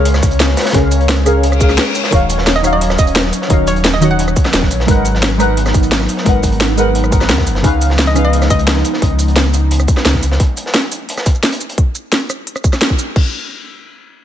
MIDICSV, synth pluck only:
0, 0, Header, 1, 2, 480
1, 0, Start_track
1, 0, Tempo, 344828
1, 1037, Time_signature, 4, 2, 24, 8
1, 19829, End_track
2, 0, Start_track
2, 0, Title_t, "Synth pluck"
2, 0, Program_c, 0, 84
2, 3559, Note_on_c, 0, 75, 97
2, 3774, Note_off_c, 0, 75, 0
2, 3796, Note_on_c, 0, 75, 92
2, 4084, Note_off_c, 0, 75, 0
2, 4158, Note_on_c, 0, 75, 93
2, 4637, Note_off_c, 0, 75, 0
2, 5117, Note_on_c, 0, 73, 97
2, 5405, Note_off_c, 0, 73, 0
2, 5478, Note_on_c, 0, 75, 88
2, 5554, Note_off_c, 0, 75, 0
2, 5598, Note_on_c, 0, 75, 79
2, 5675, Note_off_c, 0, 75, 0
2, 5716, Note_on_c, 0, 78, 91
2, 6197, Note_off_c, 0, 78, 0
2, 11238, Note_on_c, 0, 75, 92
2, 11454, Note_off_c, 0, 75, 0
2, 11479, Note_on_c, 0, 75, 90
2, 11766, Note_off_c, 0, 75, 0
2, 11838, Note_on_c, 0, 75, 93
2, 12317, Note_off_c, 0, 75, 0
2, 19829, End_track
0, 0, End_of_file